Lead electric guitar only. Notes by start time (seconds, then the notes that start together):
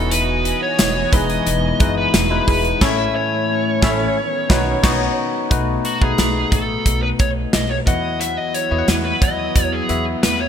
Already playing: A4
0.12 B4
0.63 C#5
1.14 D#5
1.98 B4
2.49 B4
2.82 E5
3.16 C#5
5.85 F#4
6.02 G#4
6.52 A4
7.03 B4
7.20 C#5
7.54 D#5
7.71 C#5
7.87 D#5
8.21 E5
8.37 D#5
8.54 C#5
8.88 B4
9.05 B4
9.21 D#5
9.63 C#5
9.72 G#4
10.23 B4
10.40 C#5